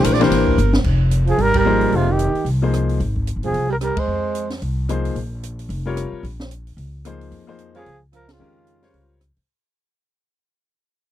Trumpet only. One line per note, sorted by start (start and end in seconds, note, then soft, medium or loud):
1.30 1.43 G#4 medium
1.42 1.56 A#4 loud
1.59 1.98 A#4 loud
1.96 2.13 F4 medium
2.12 2.48 G4 medium
3.45 3.69 G#4 medium
3.72 3.77 A#4 medium
3.83 4.01 A#4 medium
3.99 4.52 C5 medium
7.77 8.01 G#4 loud
8.15 8.33 A#4 medium
8.32 9.22 F4 medium